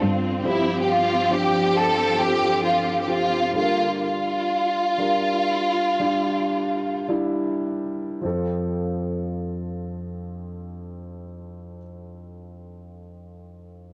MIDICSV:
0, 0, Header, 1, 5, 480
1, 0, Start_track
1, 0, Key_signature, -1, "major"
1, 0, Tempo, 874636
1, 247, Time_signature, 4, 2, 24, 8
1, 1691, Tempo, 955414
1, 2651, Tempo, 1020408
1, 3131, Tempo, 1084991
1, 3611, Tempo, 1147228
1, 4091, Tempo, 1162791
1, 6438, End_track
2, 0, Start_track
2, 0, Title_t, "Violin section"
2, 0, Program_c, 0, 48
2, 249, Note_on_c, 0, 64, 71
2, 432, Note_off_c, 0, 64, 0
2, 444, Note_on_c, 0, 67, 59
2, 483, Note_off_c, 0, 67, 0
2, 492, Note_on_c, 0, 65, 83
2, 724, Note_off_c, 0, 65, 0
2, 733, Note_on_c, 0, 67, 81
2, 964, Note_off_c, 0, 67, 0
2, 973, Note_on_c, 0, 69, 89
2, 1205, Note_off_c, 0, 69, 0
2, 1208, Note_on_c, 0, 67, 87
2, 1447, Note_off_c, 0, 67, 0
2, 1452, Note_on_c, 0, 65, 70
2, 1641, Note_off_c, 0, 65, 0
2, 1650, Note_on_c, 0, 67, 55
2, 1691, Note_off_c, 0, 67, 0
2, 1699, Note_on_c, 0, 65, 78
2, 1928, Note_off_c, 0, 65, 0
2, 1937, Note_on_c, 0, 65, 75
2, 2152, Note_off_c, 0, 65, 0
2, 2173, Note_on_c, 0, 65, 71
2, 3598, Note_off_c, 0, 65, 0
2, 6438, End_track
3, 0, Start_track
3, 0, Title_t, "Grand piano"
3, 0, Program_c, 1, 0
3, 0, Control_c, 1, 64, 127
3, 0, Note_on_c, 1, 53, 59
3, 0, Note_on_c, 1, 62, 58
3, 0, Note_on_c, 1, 65, 62
3, 0, Note_on_c, 1, 72, 64
3, 223, Note_off_c, 1, 65, 0
3, 224, Note_off_c, 1, 62, 0
3, 225, Note_off_c, 1, 72, 0
3, 242, Note_off_c, 1, 53, 0
3, 242, Note_on_c, 1, 53, 76
3, 246, Note_on_c, 1, 43, 45
3, 246, Note_on_c, 1, 60, 65
3, 249, Note_on_c, 1, 67, 81
3, 254, Control_c, 1, 64, 0
3, 359, Control_c, 1, 64, 127
3, 694, Note_off_c, 1, 53, 0
3, 696, Note_off_c, 1, 60, 0
3, 697, Note_off_c, 1, 67, 0
3, 715, Note_on_c, 1, 53, 67
3, 718, Note_on_c, 1, 60, 58
3, 721, Note_on_c, 1, 62, 72
3, 936, Note_off_c, 1, 43, 0
3, 1171, Note_off_c, 1, 53, 0
3, 1173, Note_off_c, 1, 60, 0
3, 1174, Note_off_c, 1, 62, 0
3, 1196, Note_on_c, 1, 53, 63
3, 1199, Note_on_c, 1, 60, 60
3, 1203, Note_on_c, 1, 69, 71
3, 1665, Note_off_c, 1, 53, 0
3, 1666, Note_off_c, 1, 60, 0
3, 1668, Note_off_c, 1, 69, 0
3, 1687, Note_on_c, 1, 53, 60
3, 1690, Note_on_c, 1, 60, 59
3, 1692, Note_on_c, 1, 67, 68
3, 1920, Note_on_c, 1, 55, 59
3, 1921, Note_on_c, 1, 62, 54
3, 1922, Note_off_c, 1, 53, 0
3, 1924, Note_off_c, 1, 60, 0
3, 1925, Note_off_c, 1, 67, 0
3, 1926, Note_on_c, 1, 69, 52
3, 1930, Control_c, 1, 64, 0
3, 1960, Note_off_c, 1, 69, 0
3, 1960, Note_on_c, 1, 70, 63
3, 2022, Control_c, 1, 64, 127
3, 2611, Note_off_c, 1, 55, 0
3, 2611, Note_off_c, 1, 62, 0
3, 2631, Note_off_c, 1, 70, 0
3, 2645, Note_on_c, 1, 55, 57
3, 2651, Note_on_c, 1, 62, 54
3, 2653, Note_on_c, 1, 70, 65
3, 3103, Note_off_c, 1, 55, 0
3, 3106, Note_off_c, 1, 62, 0
3, 3107, Note_off_c, 1, 70, 0
3, 3122, Note_on_c, 1, 55, 69
3, 3125, Note_on_c, 1, 62, 62
3, 3130, Note_on_c, 1, 67, 71
3, 3582, Note_off_c, 1, 55, 0
3, 3583, Note_off_c, 1, 62, 0
3, 3585, Note_off_c, 1, 67, 0
3, 3605, Note_on_c, 1, 55, 62
3, 3607, Note_on_c, 1, 62, 64
3, 3610, Note_on_c, 1, 64, 73
3, 4063, Note_off_c, 1, 55, 0
3, 4064, Note_off_c, 1, 62, 0
3, 4066, Note_off_c, 1, 64, 0
3, 4078, Note_on_c, 1, 53, 53
3, 4087, Note_on_c, 1, 41, 55
3, 4087, Note_on_c, 1, 60, 55
3, 4095, Control_c, 1, 64, 0
3, 4096, Note_on_c, 1, 69, 64
3, 4166, Control_c, 1, 64, 127
3, 5543, Note_off_c, 1, 53, 0
3, 5552, Note_off_c, 1, 41, 0
3, 5552, Note_off_c, 1, 60, 0
3, 5561, Note_off_c, 1, 69, 0
3, 6438, End_track
4, 0, Start_track
4, 0, Title_t, "String section"
4, 0, Program_c, 2, 48
4, 0, Note_on_c, 2, 50, 64
4, 0, Note_on_c, 2, 60, 55
4, 0, Note_on_c, 2, 65, 66
4, 222, Note_off_c, 2, 65, 0
4, 230, Note_off_c, 2, 50, 0
4, 241, Note_on_c, 2, 53, 67
4, 246, Note_on_c, 2, 67, 75
4, 1906, Note_off_c, 2, 53, 0
4, 1906, Note_off_c, 2, 60, 0
4, 1927, Note_on_c, 2, 50, 58
4, 1927, Note_on_c, 2, 58, 52
4, 2144, Note_off_c, 2, 67, 0
4, 2161, Note_off_c, 2, 50, 0
4, 2161, Note_off_c, 2, 58, 0
4, 6438, End_track
5, 0, Start_track
5, 0, Title_t, "Cello"
5, 0, Program_c, 3, 42
5, 13, Note_on_c, 3, 43, 73
5, 232, Note_off_c, 3, 43, 0
5, 6438, End_track
0, 0, End_of_file